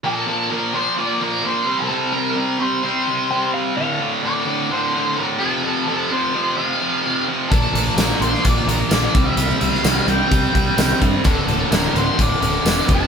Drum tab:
HH |----------------|----------------|----------------|----------------|
TB |----------------|----------------|----------------|----------------|
SD |----------------|----------------|----------------|----------------|
BD |----------------|----------------|----------------|----------------|

HH |x-x-x-x-x-x-x-x-|x-x-x-x-x-x-x-x-|x-x-x-x-x-x-x-x-|
TB |----x-------x---|----x-------x---|----x-------x---|
SD |----o--o----o---|---oo-------o---|----o-------o---|
BD |o-------o-----o-|--------o-o---o-|o-------o-----o-|